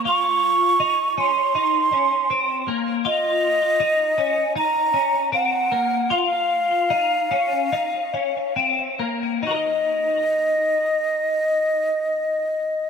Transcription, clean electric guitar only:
X:1
M:4/4
L:1/8
Q:1/4=76
K:Db
V:1 name="Clean electric guitar"
F2 E D E D C B, | F2 E D E D C B, | F2 E D E D C B, | [EGBe]8 |]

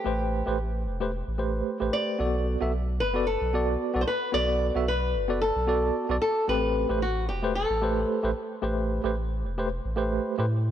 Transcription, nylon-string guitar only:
X:1
M:4/4
L:1/16
Q:"Swing 16ths" 1/4=112
K:Ador
V:1 name="Nylon-string guitar"
G6 z8 d2- | d6 B2 A4- A3/2 c/2 B2 | d4 B4 A6 A2 | B4 F2 G2 A8- |
A12 z4 |]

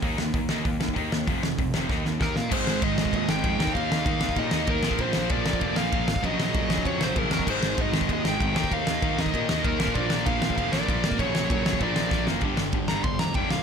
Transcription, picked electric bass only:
X:1
M:4/4
L:1/8
Q:1/4=194
K:Eblyd
V:1 name="Picked electric bass" clef=bass
E,, E,, E,, E,, E,, E,, E,, E,, | F,,, F,,, F,,, F,,, E,, E,, E,, B,, | [K:Ablyd] A,,, A,,, A,,, A,,, E,, A,,, F,, E,, | E,, E,, E, E,, B,, E,, E,, B,,, |
B,,, B,,, B,,, B,,, F,,, B,,, B,,, A,,, | B,,, B,,, B,, B,,, F,, B,,, B,,, F,, | A,,, A,,, A,,, A,,, E,, A,,, A,,, E,, | E,, E,, E, E,, B,, E,, E,, B,,, |
B,,, B,,, B,,, B,,, F,,, B,,, B,,, A,,, | B,,, B,,, B,, B,,, B,,, B,,, B,,, _G,,, | [K:Gm] G,,, G,,, G,,, G,,, G,,, F,, F,,, C,, |]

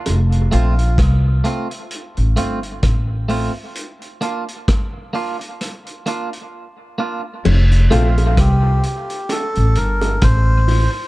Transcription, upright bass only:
X:1
M:4/4
L:1/16
Q:"Swing 16ths" 1/4=65
K:F
V:1 name="Upright bass" clef=bass
F,,,2 B,,,2 C,,2 z3 A,,, G,,,2 A,,,3 z | z16 | F,,,2 B,,,2 C,,2 z3 A,,, G,,,2 A,,,3 z |]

